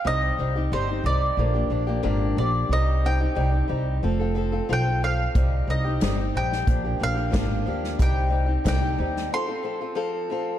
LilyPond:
<<
  \new Staff \with { instrumentName = "Mandolin" } { \time 4/4 \key c \minor \tempo 4 = 91 ees''4 c''8 d''4. r8 d''8 | ees''8 g''2~ g''8 g''8 f''8~ | f''8 ees''4 g''4 f''4. | g''4 g''4 c'''4. r8 | }
  \new Staff \with { instrumentName = "Steel-string acoustic guitar" } { \time 4/4 \key c \minor <c g c' ees' g'>8 <g c' ees' g'>16 <c' ees' g'>16 <c g c' ees' g'>16 <c' ees' g'>16 <g c' ees' g'>8 <bes, d f bes d' g'>16 <f bes d' g'>16 <f bes d' g'>16 <f bes d' g'>16 <bes, d f bes d' g'>8 <f bes d' g'>8 | <c g c' ees' g'>8 <g c' ees' g'>16 <c' ees' g'>16 <c g c' ees' g'>16 <c' ees' g'>16 <g c' ees' g'>8 <f c' f' a'>16 <c' f' a'>16 <f c' f' a'>16 <c' f' a'>16 <f c' f' a'>16 <c' f' a'>16 <f c' f' a'>8 | <c g c' ees' g'>8 <g c' ees' g'>16 <c' ees' g'>16 <c g c' ees' g'>16 <c' ees' g'>16 <g c' ees' g'>8 <bes, d f bes d' g'>16 <f bes d' g'>16 <f bes d' g'>16 <f bes d' g'>16 <bes, d f bes d' g'>16 <f bes d' g'>16 <f bes d' g'>8 | <c g c' ees' g'>8 <g c' ees' g'>16 <c' ees' g'>16 <c g c' ees' g'>16 <c' ees' g'>16 <g c' ees' g'>8 <f c' f' a'>16 <c' f' a'>16 <f c' f' a'>16 <c' f' a'>16 <f c' f' a'>8 <f c' f' a'>8 | }
  \new Staff \with { instrumentName = "Upright bass" } { \clef bass \time 4/4 \key c \minor c,8 c,8 g,,8 c,8 bes,,8 bes,,8 aes,,8 bes,,8 | c,4 c,8 c,8 f,,4 b,,4 | c,8 c,8 g,,8 bes,,8 bes,,8 bes,,8 aes,,8 ees,8 | c,4 c,8 ees,8 r2 | }
  \new DrumStaff \with { instrumentName = "Drums" } \drummode { \time 4/4 r4 r4 r4 r4 | r4 r4 r4 r4 | <hh bd>4 <hh sn>8. sn16 <hh bd>4 <hh bd sn>8. sn16 | <hh bd>4 <hh bd sn>8. sn16 r4 r4 | }
>>